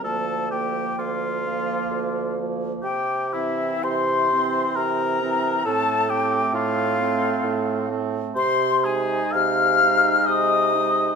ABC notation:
X:1
M:3/4
L:1/8
Q:1/4=65
K:F
V:1 name="Flute"
a g f3 z | g e c'2 b2 | a g f3 z | [K:Abmix] c' a f'2 e'2 |]
V:2 name="Oboe"
A G F3 z | G E c2 B2 | A G F3 z | [K:Abmix] c A f2 e2 |]
V:3 name="Clarinet"
B, B,2 B,2 B, | z C2 C2 C | C C2 C2 C | [K:Abmix] z E2 E2 E |]
V:4 name="French horn" clef=bass
F, F,2 F,2 F, | z E,2 E,2 E, | A, A,2 A,2 A, | [K:Abmix] z A,2 A,2 A, |]
V:5 name="Bassoon" clef=bass
D,,2 D,,2 D,,2 | C,2 C,2 C,2 | A,,2 A,,2 A,,2 | [K:Abmix] C,2 C,2 C,2 |]